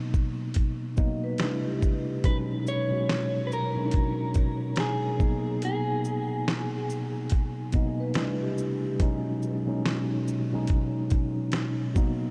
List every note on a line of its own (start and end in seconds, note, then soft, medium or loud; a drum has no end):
0.00 0.96 B2 medium
0.00 0.97 F#3 medium
0.00 0.98 A#3 medium
0.00 0.99 B3 medium
0.00 0.99 D#4 loud
0.14 kick medium
0.14 shaker soft
0.54 kick medium
0.54 closed hi-hat medium
0.96 1.39 B2 medium
0.96 1.40 F#3 medium
0.96 1.40 A#3 medium
0.96 1.41 B3 medium
0.96 1.41 D#4 medium
0.96 1.22 D#5 medium
0.96 kick medium
0.96 shaker soft
1.24 1.64 B4 medium
1.38 2.12 C3 medium
1.38 2.12 G3 medium
1.38 2.12 A3 medium
1.38 2.13 D4 medium
1.38 1.49 D#4 medium
1.38 finger snap medium
1.38 snare loud
1.38 closed hi-hat medium
1.48 2.16 E4 medium
1.65 2.21 G4 medium
1.82 kick medium
1.82 shaker soft
2.24 2.78 B2 medium
2.24 2.79 F#3 medium
2.24 2.79 G#3 medium
2.24 2.79 C#4 medium
2.24 2.80 D#4 medium
2.24 2.37 B4 medium
2.24 kick loud
2.24 closed hi-hat medium
2.67 3.43 C#5 loud
2.67 shaker soft
2.90 3.57 B2 medium
2.90 3.57 F#3 medium
2.90 3.58 G#3 medium
2.90 3.58 C#4 medium
2.90 3.58 F#4 medium
3.09 finger snap medium
3.09 snare loud
3.09 closed hi-hat soft
3.47 3.52 B4 medium
3.52 4.79 A#4 medium
3.52 shaker soft
3.76 5.12 B2 medium
3.76 5.12 F#3 medium
3.76 5.13 G#3 medium
3.76 5.13 C#4 medium
3.76 3.83 D4 medium
3.86 5.17 D#4 medium
3.91 kick medium
3.91 closed hi-hat medium
4.34 kick medium
4.34 closed hi-hat soft
4.34 shaker soft
4.76 5.64 G#4 medium
4.76 finger snap medium
4.76 snare loud
4.76 closed hi-hat medium
5.19 6.60 B2 medium
5.19 6.60 F#3 medium
5.19 6.61 A#3 medium
5.19 6.61 B3 medium
5.19 6.61 D#4 medium
5.19 kick loud
5.19 shaker soft
5.62 6.44 G#4 medium
5.62 closed hi-hat medium
6.04 shaker soft
6.48 finger snap medium
6.48 snare loud
6.48 closed hi-hat soft
6.90 shaker soft
7.30 kick medium
7.30 closed hi-hat medium
7.72 8.15 B2 medium
7.72 8.16 F#3 medium
7.72 8.16 A#3 medium
7.72 8.17 B3 medium
7.72 8.17 D#4 medium
7.72 7.99 D#5 medium
7.72 kick medium
7.72 closed hi-hat soft
7.72 shaker soft
8.00 8.40 B4 medium
8.14 8.87 C3 medium
8.14 8.88 G3 medium
8.14 8.88 A3 medium
8.14 8.89 D4 medium
8.14 8.89 E4 medium
8.14 finger snap medium
8.14 snare loud
8.14 closed hi-hat medium
8.42 8.98 G4 medium
8.58 shaker soft
8.99 9.54 B2 loud
8.99 9.54 F#3 loud
8.99 9.54 G#3 loud
8.99 9.55 C#4 loud
8.99 9.55 D#4 loud
8.99 kick loud
8.99 closed hi-hat medium
9.42 shaker soft
9.66 10.33 B2 medium
9.66 10.33 F#3 medium
9.66 10.34 G#3 medium
9.66 10.34 C#4 medium
9.66 10.34 D#4 medium
9.86 finger snap medium
9.86 snare loud
9.86 closed hi-hat soft
10.28 shaker soft
10.52 11.88 B2 medium
10.52 11.89 F#3 medium
10.52 11.89 G#3 medium
10.52 11.89 C#4 medium
10.52 11.90 D#4 loud
10.67 kick medium
10.67 closed hi-hat medium
11.10 kick medium
11.10 closed hi-hat soft
11.10 shaker soft
11.52 finger snap medium
11.52 snare loud
11.52 closed hi-hat medium
11.94 12.31 B2 medium
11.94 12.31 F#3 medium
11.94 12.31 A#3 medium
11.94 12.31 B3 medium
11.94 12.31 D#4 loud
11.94 kick loud
11.94 shaker soft